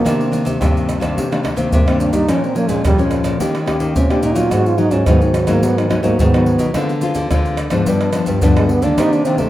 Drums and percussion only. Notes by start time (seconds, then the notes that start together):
0.06 pandeiro, tamborim, maracas, surdo
0.21 pandeiro, maracas
0.33 pandeiro, maracas
0.46 pandeiro, maracas, surdo
0.62 pandeiro, tamborim, maracas, surdo
0.77 pandeiro, maracas
0.89 pandeiro, tamborim, maracas
1.02 pandeiro, tamborim, maracas, surdo
1.18 pandeiro, maracas, surdo
1.32 pandeiro, tamborim, maracas
1.45 pandeiro, tamborim, surdo
1.57 pandeiro, maracas, surdo
1.72 pandeiro, maracas, surdo
1.88 pandeiro, tamborim, maracas
2.00 pandeiro, maracas
2.13 pandeiro, maracas, surdo
2.29 pandeiro, tamborim, maracas, surdo
2.44 pandeiro, maracas
2.56 pandeiro, maracas
2.69 pandeiro, maracas, surdo
2.85 pandeiro, tamborim, maracas, surdo
2.99 pandeiro, maracas
3.11 pandeiro, tamborim, maracas
3.24 pandeiro, tamborim, maracas, surdo
3.40 pandeiro, maracas, surdo
3.55 pandeiro, tamborim, maracas
3.68 pandeiro, tamborim, surdo
3.80 pandeiro, maracas, surdo
3.96 pandeiro, maracas, surdo
4.10 pandeiro, tamborim, maracas
4.23 pandeiro, maracas
4.36 pandeiro, maracas, surdo
4.51 pandeiro, tamborim, maracas, surdo
4.66 pandeiro, maracas
4.78 pandeiro
4.91 pandeiro, maracas, surdo
5.06 pandeiro, tamborim, maracas, surdo
5.22 pandeiro, maracas
5.34 pandeiro, tamborim, maracas
5.47 pandeiro, tamborim, maracas, surdo
5.63 pandeiro, maracas, surdo
5.78 pandeiro, tamborim, maracas
5.91 pandeiro, tamborim, surdo
6.04 pandeiro, maracas, surdo
6.19 pandeiro, maracas, surdo
6.34 pandeiro, tamborim, maracas
6.46 pandeiro
6.59 pandeiro, maracas, surdo
6.74 pandeiro, tamborim, maracas, surdo
6.89 pandeiro, maracas
7.01 pandeiro, maracas
7.14 pandeiro, maracas, surdo
7.31 pandeiro, tamborim, maracas, surdo
7.45 pandeiro, maracas
7.57 pandeiro, tamborim, maracas
7.70 pandeiro, tamborim, maracas, surdo
7.86 pandeiro, maracas, surdo
8.01 pandeiro, tamborim, maracas
8.13 pandeiro, tamborim, maracas
8.26 pandeiro, maracas, surdo
8.42 pandeiro, maracas, surdo
8.57 pandeiro, tamborim, maracas
8.69 pandeiro
8.82 pandeiro, maracas, surdo
8.98 pandeiro, tamborim, maracas, surdo
9.13 pandeiro, maracas
9.25 pandeiro, maracas
9.38 pandeiro, maracas, surdo